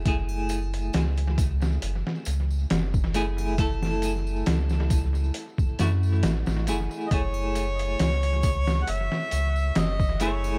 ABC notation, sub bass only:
X:1
M:4/4
L:1/16
Q:"Swing 16ths" 1/4=68
K:F#m
V:1 name="Sub bass" clef=bass
F,,,4 C,,4 F,,, z C,,2 F,,,4- | F,,,4 C,,4 z2 F,,2 A,,, A,,, F,,, z | F,,,4 C,,4 F,,, z C,,2 F,,,4 |]